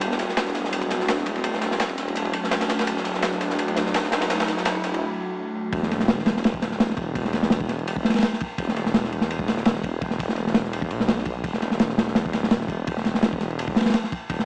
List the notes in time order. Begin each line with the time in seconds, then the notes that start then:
Already playing: riser
0.01 E1, kick, closed hi-hat, ride
0.12 snare
0.19 snare, closed hi-hat, ride
0.29 snare
0.37 snare, closed hi-hat, ride
0.47 snare, closed hi-hat
0.55 snare, closed hi-hat, ride
0.65 snare
0.73 closed hi-hat, ride
0.82 kick, closed hi-hat
0.90 D1, snare, closed hi-hat, ride
1.00 snare
1.08 snare, open hi-hat, ride
1.17 E1, snare
1.26 kick, snare, closed hi-hat, ride
1.36 snare
1.44 E1, kick, closed hi-hat, ride
1.53 snare
1.61 snare, closed hi-hat, ride
1.71 snare
1.80 snare, closed hi-hat, ride
1.90 kick
1.98 snare, closed hi-hat, ride
2.08 ride
2.16 closed hi-hat, ride
2.25 kick
2.33 closed hi-hat, ride
2.44 snare
2.51 snare, closed hi-hat, ride
2.61 snare, ride
2.69 snare, closed hi-hat, ride
2.79 snare, ride
2.87 E1, kick, closed hi-hat, ride
2.97 snare
3.05 snare, closed hi-hat, ride
3.14 snare
3.22 snare, closed hi-hat, ride
3.32 snare, closed hi-hat
3.40 snare, closed hi-hat, ride
3.50 snare
3.59 closed hi-hat, ride
3.68 kick, closed hi-hat
3.76 D1, snare, closed hi-hat, ride
3.86 snare
3.94 snare, open hi-hat, ride
4.03 E1, snare
4.12 snare, closed hi-hat, ride
4.21 snare, ride
4.30 E1, snare, closed hi-hat, ride
4.40 snare, ride
4.48 snare, closed hi-hat, ride
4.57 snare
4.65 snare, closed hi-hat, ride
4.75 kick
4.84 snare, closed hi-hat, ride
4.94 ride
5.73 E1, kick, ride
5.83 snare
5.91 snare, ride
6.00 snare
6.08 snare, ride
6.19 snare
6.26 snare, ride
6.37 snare
6.44 snare, ride
6.54 kick
6.62 D1, snare, ride
6.72 snare
6.80 snare, ride
6.89 E1, snare
6.97 kick, ride
7.15 E1, kick, ride
7.25 snare
7.33 snare, ride
7.42 snare
7.50 snare, ride
7.61 kick
7.69 snare, ride
7.79 ride
7.87 ride
7.96 kick
8.05 snare, ride
8.09 snare, ride
8.14 snare, ride
8.18 snare, ride
8.23 snare, ride
8.33 snare
8.40 kick, ride
8.58 E1, kick, ride
8.68 snare
8.76 snare, ride
8.86 snare
8.94 snare, ride
9.04 snare
9.12 ride
9.21 snare
9.31 ride
9.39 kick
9.48 D1, snare, ride
9.57 snare
9.65 snare, ride
9.75 E1, snare
9.84 kick, ride
10.01 E1, kick, ride
10.10 snare
10.19 kick, ride
10.29 snare
10.36 snare, ride
10.47 snare
10.54 snare, ride
10.64 snare
10.73 ride
10.82 kick
10.91 B1, ride
11.00 snare
11.08 snare, ride
11.18 snare
11.25 kick, ride
11.44 E1, kick, ride
11.53 snare
11.62 snare, ride
11.71 snare
11.79 snare, ride
11.89 snare
11.98 snare, ride
12.08 snare
12.15 snare, ride
12.26 kick
12.33 D1, snare, ride
12.43 snare
12.51 snare, ride
12.61 E1, snare
12.68 kick, ride
12.87 E1, kick, ride
12.97 snare
13.05 snare, ride
13.15 snare
13.23 snare, ride
13.33 kick
13.41 snare, ride
13.50 ride
13.59 ride
13.68 kick
13.76 snare, ride
13.81 snare, ride
13.85 snare, ride
13.90 snare, ride
13.94 snare, ride
14.04 snare
14.12 kick, ride
14.30 E1, kick, ride
14.39 snare